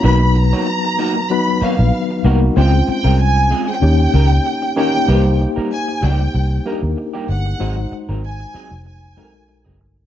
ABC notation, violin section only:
X:1
M:4/4
L:1/16
Q:"Swing 16ths" 1/4=95
K:Cphr
V:1 name="Violin section"
=b2 ^a6 b2 f4 z2 | g2 g2 a3 g6- g g2- | g2 z2 a2 g4 z4 _g2- | _g2 z2 a4 a6 z2 |]